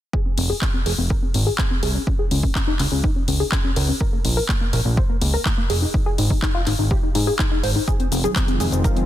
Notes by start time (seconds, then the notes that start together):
0.13 G#4, kick
0.26 C4
0.38 F1 C4, open hi-hat
0.50 G#4
0.61 C4, kick, clap
0.74 C4
0.86 F1 G#4, open hi-hat
0.98 F1 C4
1.10 A#4, kick
1.22 C4
1.34 G#1 C4, open hi-hat
1.47 G#4
1.58 C4, kick, clap
1.71 C4
1.83 C2 G#4, open hi-hat
1.95 C#4
2.07 C#4, kick
2.19 G#4
2.31 C#2 C#4, open hi-hat
2.43 C#4, kick
2.55 C#4, kick, clap
2.67 D#4
2.79 C#2 C#4, clap, open hi-hat
2.92 C#2 C#4
3.04 D#4, kick
3.16 C#4
3.28 C#2 C#4, open hi-hat
3.40 G#4
3.52 C#4, kick, clap
3.64 C#4
3.76 C#2 A#4, open hi-hat
3.89 C#4
4.01 A#4, kick
4.13 A#3
4.25 A#1 A#3, open hi-hat
4.37 A#4
4.49 A#3, kick, clap
4.61 A#3
4.73 A#1 A#4, open hi-hat
4.85 A#1 A#3
4.97 C5, kick
5.10 A#3
5.21 C#2 A#3, open hi-hat
5.34 A#4
5.45 A#3, kick, clap
5.58 A#3
5.70 F1 G#4, open hi-hat
5.82 D#4
5.94 D#4, kick
6.06 G#4
6.18 G#1 D#4, open hi-hat
6.30 D#4, kick
6.42 D#4, kick, clap
6.55 F4
6.67 G#1 D#4, clap, open hi-hat
6.79 G#1 D#4
6.91 G4, kick
7.03 D#4
7.15 G#2 D#4, open hi-hat
7.27 G#4
7.39 D#4, kick, clap
7.51 D#4
7.63 G#1 C5, open hi-hat
7.76 D#4
7.87 D#3 F3 G#3 C4 F4 G#4, kick, closed hi-hat, shaker
8.00 C4, closed hi-hat
8.12 F1 C4, open hi-hat, shaker
8.24 G#4, closed hi-hat, high conga, shaker
8.36 C4, kick, clap, closed hi-hat, shaker
8.48 C4, closed hi-hat
8.60 F1 G#4, mid tom, open hi-hat, shaker
8.72 F1 C4, closed hi-hat, shaker
8.84 A#4, kick, closed hi-hat, shaker
8.96 C4, closed hi-hat, high conga